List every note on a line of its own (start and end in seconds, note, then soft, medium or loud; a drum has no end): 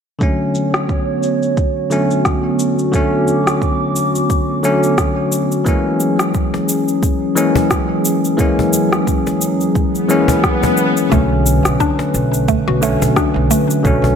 0.19 1.87 D3 medium
0.19 1.88 F#3 medium
0.19 1.88 A3 medium
0.19 5.62 B3 medium
0.19 5.63 F#4 medium
0.19 2.91 C#5 medium
0.19 kick medium
0.19 cabasa soft
0.23 1.89 C#4 medium
0.55 cabasa medium
0.74 cross-stick medium
0.74 cabasa soft
0.89 kick medium
0.89 cabasa soft
1.23 cabasa medium
1.43 cabasa soft
1.57 kick medium
1.57 cabasa soft
1.90 2.04 D3 medium
1.90 2.05 F#3 medium
1.90 2.05 A3 medium
1.90 2.05 C#4 medium
1.90 cabasa medium
2.11 cabasa soft
2.25 kick medium
2.25 cross-stick medium
2.25 cabasa soft
2.59 cabasa medium
2.79 cabasa soft
2.91 4.60 D3 medium
2.91 4.60 F#3 medium
2.91 4.61 A3 medium
2.91 5.63 D6 medium
2.91 kick medium
2.91 cabasa soft
2.96 4.62 C#4 medium
3.28 cabasa medium
3.47 cross-stick medium
3.47 cabasa soft
3.62 kick medium
3.62 cabasa soft
3.96 cabasa medium
4.15 cabasa soft
4.30 kick medium
4.30 cabasa soft
4.63 4.77 D3 medium
4.63 4.77 F#3 medium
4.63 4.78 A3 medium
4.63 4.78 C#4 medium
4.63 cabasa medium
4.83 cabasa soft
4.98 kick loud
4.98 cross-stick medium
4.98 cabasa soft
5.32 cabasa medium
5.52 cabasa soft
5.64 7.32 E3 medium
5.64 11.08 F#3 medium
5.64 7.33 G#3 medium
5.64 7.34 A#3 medium
5.64 11.08 C#4 medium
5.64 7.34 C#4 medium
5.64 11.08 G#4 medium
5.64 kick loud
5.64 cabasa soft
6.00 cabasa medium
6.19 cross-stick medium
6.19 cabasa soft
6.34 kick medium
6.34 cabasa soft
6.54 cajon slap medium
6.69 cabasa medium
6.88 cabasa soft
7.03 kick medium
7.03 cabasa soft
7.36 7.50 E3 medium
7.36 7.50 G#3 medium
7.36 7.50 A#3 medium
7.36 7.51 C#4 medium
7.36 cabasa medium
7.55 cajon bass medium
7.55 cabasa soft
7.71 kick loud
7.71 cross-stick medium
7.71 cabasa soft
8.05 cabasa medium
8.25 cabasa soft
8.37 10.05 E3 medium
8.37 10.06 G#3 medium
8.37 10.06 A#3 medium
8.37 10.07 C#4 medium
8.37 kick loud
8.37 cabasa soft
8.59 cajon bass medium
8.73 cabasa medium
8.93 cross-stick medium
8.93 cabasa soft
9.07 kick medium
9.07 cabasa soft
9.27 cajon slap medium
9.27 cabasa soft
9.41 cabasa medium
9.61 cabasa soft
9.75 kick loud
9.75 swell medium
9.75 cabasa soft
9.95 cabasa soft
10.09 10.22 E3 medium
10.09 10.23 G#3 medium
10.09 10.23 A#3 medium
10.09 10.24 C#4 loud
10.09 cabasa medium
10.28 cajon bass medium
10.28 cabasa soft
10.44 kick loud
10.44 cross-stick medium
10.44 cabasa soft
10.63 cajon bass loud
10.63 cabasa soft
10.77 cabasa medium
10.97 cabasa soft
11.10 11.60 B1 medium
11.10 12.78 D3 medium
11.10 14.15 D3 medium
11.10 12.78 F#3 medium
11.10 14.15 A3 medium
11.10 11.30 A3 medium
11.10 12.79 A3 medium
11.10 14.15 B4 medium
11.10 kick medium
11.10 cabasa soft
11.14 12.80 C#4 medium
11.46 cabasa medium
11.65 11.78 B1 medium
11.65 cross-stick medium
11.65 cabasa soft
11.80 11.91 D4 medium
11.80 kick medium
11.80 cabasa soft
11.99 cajon slap medium
12.14 12.62 B1 medium
12.14 cabasa medium
12.34 cabasa soft
12.48 12.67 A3 medium
12.48 kick medium
12.48 cabasa soft
12.68 12.95 B1 medium
12.68 12.82 F#4 medium
12.81 12.95 D3 medium
12.81 12.95 F#3 medium
12.81 12.96 A3 medium
12.81 13.01 A3 loud
12.81 12.96 C#4 medium
12.81 cabasa medium
13.02 13.14 B1 medium
13.02 cajon bass medium
13.02 cabasa soft
13.16 13.27 D4 medium
13.16 kick loud
13.16 cross-stick medium
13.16 cabasa soft
13.36 13.48 B1 medium
13.51 14.15 A3 medium
13.51 cabasa medium
13.70 cabasa soft
13.83 14.15 B1 medium
13.83 14.15 D3 medium
13.83 14.15 F#3 medium
13.83 14.15 A3 medium
13.83 kick loud
13.83 cabasa soft
13.87 14.15 C#4 loud
14.04 cajon bass medium